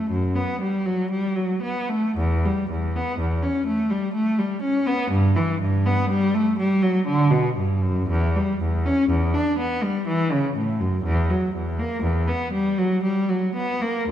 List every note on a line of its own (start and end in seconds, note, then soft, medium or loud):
0.00 0.11 A3 medium
0.10 0.35 F#2 medium
0.35 0.61 B3 medium
0.61 0.85 G3 medium
0.86 1.11 F#3 medium
1.10 1.36 G3 medium
1.36 1.62 F#3 medium
1.62 1.89 B3 medium
1.89 2.17 A3 medium
2.17 2.44 E2 medium
2.45 2.71 G3 medium
2.70 2.95 E2 medium
2.96 3.20 B3 medium
3.19 3.42 E2 medium
3.43 3.67 C#4 medium
3.66 3.90 A3 medium
3.90 4.14 G3 medium
4.13 4.38 A3 medium
4.39 4.63 G3 medium
4.62 4.86 C#4 medium
4.87 5.12 B3 medium
5.10 5.35 G2 medium
5.36 5.61 E3 medium
5.61 5.86 G2 medium
5.86 6.11 B3 medium
6.09 6.34 G3 medium
6.34 6.59 A3 medium
6.59 6.82 G3 medium
6.82 7.07 F#3 medium
7.06 7.30 D3 medium
7.31 7.55 B2 medium
7.56 7.81 G2 medium
7.82 8.08 F#2 medium
8.09 8.34 E2 medium
8.36 8.60 G3 medium
8.61 8.84 E2 medium
8.86 9.09 C#4 medium
9.09 9.32 E2 medium
9.34 9.57 D4 medium
9.59 9.81 B3 medium
9.83 10.06 G3 medium
10.07 10.30 E3 medium
10.31 10.55 C#3 medium
10.56 10.79 A2 medium
10.80 11.04 F#2 medium
11.04 11.28 E2 medium
11.29 11.53 F#3 medium
11.55 11.78 E2 medium
11.79 12.03 A#3 medium
12.03 12.27 E2 medium
12.27 12.53 B3 medium
12.53 12.77 G3 medium
12.78 13.03 F#3 medium
13.03 13.28 G3 medium
13.29 13.55 F#3 medium
13.55 13.81 B3 medium
13.81 14.09 A#3 medium